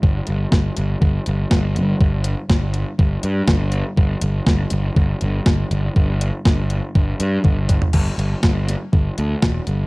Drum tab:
CC |----------------|----------------|----------------|----------------|
HH |--x---x---x---x-|--x---x---x---x-|--x---x---x---x-|--x---x---x---x-|
SD |----o-------o---|----o-------o---|----o-------o---|----o-----------|
T1 |----------------|----------------|----------------|------------o---|
FT |----------------|----------------|----------------|---------------o|
BD |o---o---o---o---|o---o---o---o---|o---o---o---o---|o---o---o---o-o-|

CC |x---------------|
HH |--x---x---x---x-|
SD |----o-o-----o---|
T1 |----------------|
FT |----------------|
BD |o---o---o---o---|